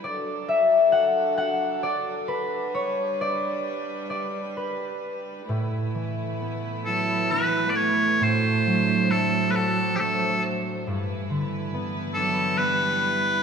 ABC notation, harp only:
X:1
M:3/4
L:1/16
Q:1/4=67
K:Glyd
V:1 name="Harp"
d2 e2 f2 f2 d2 B2 | c2 d4 d2 B3 z | A,,2 E,2 B,2 E2 B,4 | A,,2 F,2 A,2 F2 A,4 |
G,,2 D,2 B,2 D2 B,4 |]